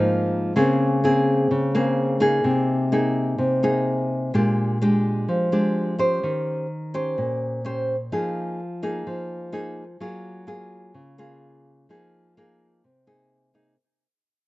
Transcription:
0.00 0.53 G#2 medium
0.00 0.52 F3 medium
0.00 0.53 A#3 medium
0.00 0.53 D#4 medium
0.56 1.48 C#3 medium
0.56 0.99 A#3 medium
0.56 0.99 C4 medium
0.56 1.00 G#4 medium
1.04 1.70 A#3 medium
1.04 1.71 C4 medium
1.04 1.71 G#4 medium
1.51 2.43 C#3 medium
1.75 2.18 A#3 medium
1.75 2.18 C4 medium
1.75 2.18 G#4 medium
2.20 2.88 A#3 medium
2.20 2.88 D#4 medium
2.20 2.88 G#4 medium
2.44 3.36 C3 medium
2.92 3.59 A#3 medium
2.92 3.59 D#4 medium
2.92 3.59 G#4 medium
3.38 4.31 C3 medium
3.63 4.30 A#3 soft
3.63 4.30 D#4 medium
3.63 4.30 G#4 medium
4.34 5.26 A#2 medium
4.34 4.77 G#3 medium
4.34 4.77 D4 medium
4.34 4.77 G4 medium
4.82 5.48 G#3 medium
4.82 5.48 D4 medium
4.82 5.49 G4 medium
5.28 6.20 F3 medium
5.52 5.95 G#3 medium
5.52 5.95 D4 medium
5.52 5.96 G4 medium
5.98 6.66 C#4 medium
5.98 6.66 G4 medium
5.98 6.66 C5 medium
6.23 7.15 D#3 medium
6.94 7.61 C#4 medium
6.94 7.61 G4 medium
6.94 7.61 C5 medium
7.18 8.09 A#2 medium
7.65 7.95 C#4 medium
7.65 7.95 G4 soft
7.65 7.95 C5 medium
8.12 9.04 F3 medium
8.12 8.59 A#3 soft
8.12 8.59 D#4 medium
8.12 8.59 G#4 medium
8.83 9.49 A#3 medium
8.83 9.50 D#4 medium
8.83 9.50 G#4 medium
9.07 9.98 F3 medium
9.52 9.83 A#3 medium
9.52 9.83 D#4 medium
9.52 9.83 G#4 medium
10.00 10.92 F#3 medium
10.00 10.44 A#3 medium
10.00 10.44 F4 medium
10.00 10.44 G#4 medium
10.47 11.14 A#3 medium
10.47 11.14 F4 medium
10.47 11.15 G#4 medium
10.94 11.86 C#3 medium
11.18 11.85 A#3 medium
11.18 11.85 F4 medium
11.18 11.86 G#4 medium
11.89 12.81 F3 medium
11.89 12.33 A#3 medium
11.89 12.33 D#4 medium
11.89 12.33 G#4 medium
12.37 12.84 A#3 medium
12.37 12.83 D#4 medium
12.37 12.84 G#4 medium
12.84 13.76 C3 medium
13.07 13.50 A#3 soft
13.07 13.50 D#4 medium
13.07 13.51 G#4 medium
13.54 13.74 A#3 medium
13.54 13.74 D#4 medium
13.54 13.74 G#4 medium

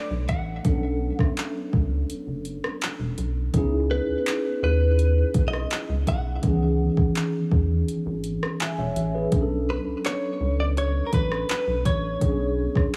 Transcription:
0.00 0.60 F#3 medium
0.00 0.61 A3 medium
0.00 0.61 B3 medium
0.00 0.62 D4 medium
0.00 0.62 A4 medium
0.00 0.13 D5 loud
0.10 0.25 B1 medium
0.29 0.59 A1 loud
0.29 1.23 F#5 loud
0.29 kick medium
0.29 closed hi-hat medium
0.63 1.10 B1 loud
0.63 3.49 F#3 medium
0.63 3.49 B3 medium
0.63 3.50 C#4 medium
0.63 3.51 D4 medium
0.63 kick loud
0.63 closed hi-hat medium
0.68 3.51 A4 medium
1.19 1.26 C#2 soft
1.19 kick loud
1.19 cross-stick medium
1.23 1.69 E5 loud
1.37 clap loud
1.37 closed hi-hat medium
1.73 2.03 C#2 loud
1.73 kick loud
2.09 2.16 F#1 soft
2.09 closed hi-hat medium
2.27 2.57 F#1 medium
2.45 closed hi-hat medium
2.64 cross-stick medium
2.81 clap loud
2.81 closed hi-hat medium
2.99 3.15 E1 medium
3.18 3.48 B1 medium
3.18 closed hi-hat medium
3.52 3.99 C#2 loud
3.52 3.60 D#3 medium
3.52 6.39 B3 medium
3.52 6.40 C#4 medium
3.52 6.40 D#4 medium
3.52 kick loud
3.52 closed hi-hat medium
3.57 6.42 E4 medium
3.57 6.41 G#4 medium
3.91 4.63 B4 medium
4.08 4.15 D#2 soft
4.26 clap loud
4.26 closed hi-hat medium
4.62 5.23 D#2 loud
4.62 5.43 B4 medium
4.99 closed hi-hat medium
5.34 5.65 B1 medium
5.34 kick medium
5.34 closed hi-hat medium
5.48 5.92 D#5 loud
5.53 cross-stick medium
5.71 clap loud
5.71 closed hi-hat medium
5.89 6.04 C#2 medium
6.07 6.37 B1 medium
6.07 7.48 F#5 loud
6.07 kick medium
6.07 closed hi-hat medium
6.42 6.88 C#2 loud
6.42 9.29 D#3 medium
6.42 9.27 E3 medium
6.42 9.28 B3 medium
6.42 9.29 C#4 medium
6.42 kick loud
6.42 closed hi-hat medium
6.47 8.22 G#4 medium
6.97 7.04 E2 soft
6.97 kick loud
7.15 clap loud
7.15 closed hi-hat medium
7.51 7.82 E2 medium
7.51 kick loud
7.88 7.95 G#1 soft
7.88 closed hi-hat medium
8.06 8.36 G#1 loud
8.24 closed hi-hat medium
8.43 cross-stick medium
8.60 8.77 E5 medium
8.60 8.77 G#5 medium
8.60 clap loud
8.60 closed hi-hat medium
8.78 8.93 E1 medium
8.78 9.13 C#5 medium
8.78 9.13 E5 medium
8.96 9.26 A1 medium
8.96 closed hi-hat medium
9.15 9.34 G#4 medium
9.15 9.49 B4 medium
9.30 9.77 B1 loud
9.30 12.16 F#3 medium
9.30 12.17 B3 medium
9.30 12.18 C#4 medium
9.30 12.18 D4 medium
9.30 kick loud
9.30 closed hi-hat medium
9.36 9.40 G#4 medium
9.42 12.22 A4 medium
9.70 9.80 B4 loud
9.86 9.94 C#2 soft
10.05 10.60 C#5 loud
10.05 clap loud
10.05 closed hi-hat medium
10.40 11.01 C#2 medium
10.60 10.65 D5 loud
10.77 11.05 C#5 loud
10.77 closed hi-hat medium
11.07 11.13 A#4 medium
11.13 11.43 A1 loud
11.13 11.49 B4 loud
11.13 kick medium
11.13 closed hi-hat medium
11.32 cross-stick medium
11.49 11.86 B4 medium
11.49 clap loud
11.49 closed hi-hat medium
11.67 11.82 B1 medium
11.85 12.15 A1 loud
11.85 12.96 C#5 loud
11.85 kick medium
11.85 closed hi-hat medium
12.19 12.67 B1 loud
12.19 12.96 F#3 medium
12.19 12.96 B3 medium
12.19 12.96 C#4 medium
12.19 12.96 D4 medium
12.19 kick loud
12.19 closed hi-hat medium
12.24 12.96 G#4 medium
12.75 12.83 D2 soft
12.75 kick loud
12.75 cross-stick medium

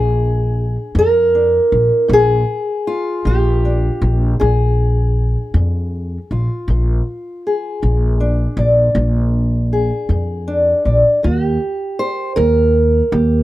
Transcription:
0.00 0.75 A#1 medium
0.00 0.50 A#2 medium
0.00 1.34 D4 soft
0.00 0.95 G#4 medium
0.95 1.58 F2 medium
0.95 1.65 A#2 medium
0.95 2.12 A#4 loud
1.35 2.16 D4 soft
1.72 1.88 A#1 medium
2.08 2.42 A#1 medium
2.08 2.79 A#2 medium
2.13 3.26 G#4 loud
2.87 4.02 F4 medium
3.25 3.88 A#1 medium
3.25 3.94 A#2 medium
3.25 4.39 G4 loud
3.65 6.65 D4 soft
4.02 4.33 A#1 medium
4.40 5.35 A#1 medium
4.40 5.09 A#2 medium
4.40 6.30 G#4 medium
5.54 6.17 F2 medium
5.54 6.24 A#2 medium
6.31 6.46 A#1 medium
6.31 8.58 F4 soft
6.68 6.99 A#1 medium
6.68 7.38 A#2 medium
7.47 9.72 G#4 medium
7.82 8.45 A#1 medium
7.82 8.51 A#2 medium
8.20 10.46 D4 medium
8.57 8.89 A#1 medium
8.57 10.85 D5 medium
8.95 9.89 A#1 medium
8.95 9.65 A#2 medium
9.73 11.20 G#4 medium
10.09 10.72 F2 medium
10.09 10.79 A#2 medium
10.48 11.20 D4 medium
10.85 11.02 A#1 medium
10.85 11.20 D5 medium
11.23 11.56 D#2 medium
11.23 11.92 D#3 medium
11.23 11.44 F#4 medium
11.44 12.76 G4 medium
11.99 12.36 C5 loud
12.36 13.00 D#2 loud
12.36 13.06 D#3 medium
12.36 13.43 A#4 medium
13.12 13.43 D#2 loud
13.12 13.43 G4 soft

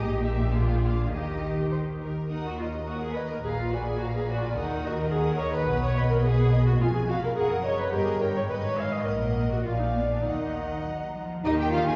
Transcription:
0.00 1.11 A#1 medium
0.00 1.12 A#2 medium
0.00 0.50 D#4 soft
0.00 0.51 G4 soft
0.00 0.52 G4 soft
0.00 0.22 D#5 medium
0.23 0.51 E5 medium
0.51 1.11 D4 soft
0.51 1.10 F4 soft
0.51 1.11 G#4 soft
0.51 0.60 F5 soft
0.58 0.67 G5 soft
0.69 0.77 F5 soft
0.75 0.84 G5 soft
0.84 1.02 F5 medium
1.04 1.11 F5 soft
1.10 2.08 D#2 soft
1.10 2.08 D#3 soft
1.10 2.09 D#4 soft
1.10 2.09 G4 soft
1.10 1.65 G4 soft
1.10 1.71 D#5 medium
1.71 1.79 C5 soft
2.02 2.30 A#4 soft
2.29 3.40 D#2 soft
2.29 2.43 D#4 medium
2.29 2.57 A#4 soft
2.29 2.57 F#5 soft
2.29 2.56 D#6 soft
2.45 2.59 F#4 soft
2.58 2.66 F4 soft
2.58 2.89 D#5 soft
2.58 2.87 A#5 soft
2.87 3.01 F#4 soft
2.87 3.17 A#4 soft
2.87 3.17 F#5 soft
2.87 3.16 D#6 soft
3.02 3.16 G#4 soft
3.15 3.30 B4 medium
3.15 3.44 D#5 soft
3.15 3.42 A#5 soft
3.30 3.36 A#4 soft
3.43 4.55 A#1 soft
3.43 4.55 A#2 soft
3.43 3.50 G#4 medium
3.43 3.70 B4 soft
3.43 3.70 F5 soft
3.43 3.70 A#5 soft
3.58 3.72 F4 soft
3.70 3.87 F#4 medium
3.70 4.01 D5 soft
3.70 4.01 G#5 soft
3.70 4.00 B5 soft
3.87 4.01 G#4 medium
3.99 4.05 F#4 medium
3.99 4.28 B4 soft
3.99 4.28 F5 soft
3.99 4.29 A#5 soft
4.15 4.29 G#4 medium
4.27 4.42 F#4 medium
4.27 4.57 D5 soft
4.27 4.58 G#5 soft
4.27 4.57 B5 soft
4.44 4.58 F4 medium
4.57 5.69 D#2 soft
4.57 5.69 D#3 soft
4.57 4.86 D#4 medium
4.57 4.83 A#4 soft
4.57 4.83 F#5 soft
4.57 4.83 D#6 soft
4.85 5.00 F#4 medium
4.85 5.13 D#5 soft
4.85 5.13 A#5 soft
5.00 5.14 A#4 medium
5.11 5.27 G#4 medium
5.11 5.40 A#4 soft
5.11 5.40 F#5 soft
5.11 5.41 D#6 soft
5.27 5.41 A#4 medium
5.39 5.55 C#5 medium
5.39 5.68 D#5 soft
5.39 5.68 A#5 soft
5.56 5.83 B4 medium
5.67 6.79 B1 medium
5.67 6.79 B2 medium
5.67 5.94 B4 soft
5.67 5.94 F#5 soft
5.67 5.94 D#6 soft
5.84 5.97 C#5 medium
5.96 6.11 B4 medium
5.96 6.24 D#5 soft
5.96 6.24 B5 soft
6.11 6.17 A#4 medium
6.23 6.66 G#4 medium
6.23 6.53 B4 soft
6.23 6.53 F#5 soft
6.23 6.52 D#6 soft
6.52 6.81 D#5 soft
6.52 6.81 B5 soft
6.67 6.73 F#4 medium
6.80 7.37 F1 medium
6.80 7.37 F2 medium
6.80 6.86 F4 medium
6.80 7.06 G#5 soft
6.80 7.07 G#5 soft
6.95 7.00 G#4 medium
7.08 7.14 F#4 medium
7.08 7.37 F5 soft
7.08 7.37 B5 soft
7.24 7.29 A#4 medium
7.35 7.92 F#1 medium
7.35 7.92 F#2 medium
7.35 7.50 G#4 medium
7.35 7.62 A#4 soft
7.35 7.62 F#5 soft
7.35 7.63 D#6 soft
7.51 7.65 A#4 medium
7.64 7.79 C#5 medium
7.64 7.92 D#5 soft
7.64 7.93 A#5 soft
7.79 7.93 B4 medium
7.92 8.50 G1 soft
7.92 8.50 G2 medium
7.92 8.07 G4 medium
7.92 8.19 A#4 soft
7.92 8.20 D#5 soft
7.92 8.20 G5 soft
8.06 8.21 G#4 medium
8.20 8.26 A#4 medium
8.20 8.51 C#5 soft
8.20 8.50 G5 soft
8.20 8.50 A#5 soft
8.36 8.42 C#5 medium
8.50 9.08 G#1 soft
8.50 9.08 G#2 soft
8.50 8.56 B4 medium
8.50 8.77 B4 soft
8.50 8.77 D#5 soft
8.50 8.77 B5 soft
8.65 8.79 C#5 medium
8.78 9.07 B4 soft
8.78 9.06 D#5 soft
8.78 8.94 F5 medium
8.78 9.07 G#5 soft
8.93 9.08 D#5 medium
9.07 9.62 A#1 soft
9.07 9.62 A#2 soft
9.07 9.51 A#4 medium
9.07 9.61 D#5 soft
9.07 9.61 F#5 soft
9.52 9.66 F#4 soft
9.65 10.24 A#1 soft
9.65 10.24 A#2 soft
9.65 9.71 F4 medium
9.65 10.25 D5 soft
9.65 10.25 F5 soft
9.65 10.25 G#5 soft
9.80 9.86 D#4 soft
9.96 10.02 B3 soft
10.11 10.25 D4 soft
10.25 11.25 D#2 soft
10.25 10.79 D#3 soft
10.25 10.85 D#4 soft
10.25 11.25 D#5 soft
10.25 11.25 F#5 soft
10.25 11.24 A#5 soft
10.85 11.13 F#3 soft
11.16 11.44 F3 soft
11.44 11.96 D#2 medium
11.44 11.96 D#3 medium
11.44 11.58 D#4 medium
11.44 11.53 D#4 medium
11.44 11.54 G4 medium
11.44 11.51 D#5 medium
11.59 11.73 G4 medium
11.59 11.73 G5 medium
11.71 11.83 D#4 medium
11.71 11.86 F4 medium
11.71 11.82 G4 medium
11.71 11.87 F5 medium
11.88 11.96 G#4 medium
11.88 11.94 G#5 medium

